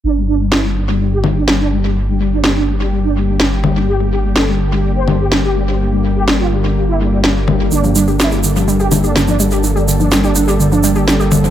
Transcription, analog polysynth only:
X:1
M:4/4
L:1/16
Q:1/4=125
K:Gm
V:1 name="Analog polysynth" clef=bass
D G, D G, =E G, z G, G, G G, D G, D G, G, | z G, G, D G, D G, G, G, D G, G, z2 G, G, | G G, G G, A G, z G, G, c G, G G, G G, G, | z G, G, G G, F G, G, G, =E G, G, G, z G, G, |
D G, D G, =E G, z G, G, G G, D G, D G, G, | z G, G, D G, D G, G, G, D G, G, G, z G, G, |]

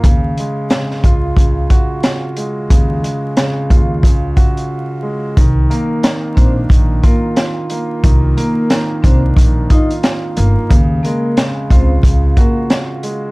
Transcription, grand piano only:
X:1
M:4/4
L:1/8
Q:"Swing 16ths" 1/4=90
K:Eblyd
V:1 name="Grand piano" clef=bass
_D, _A, D, F D, _G2 A, | _D, _A, D, F D, _G2 A, | E, B, E, D E, F2 B, | E, B, E, D E, F2 B, |
_D, _A, D, F D, _G2 A, |]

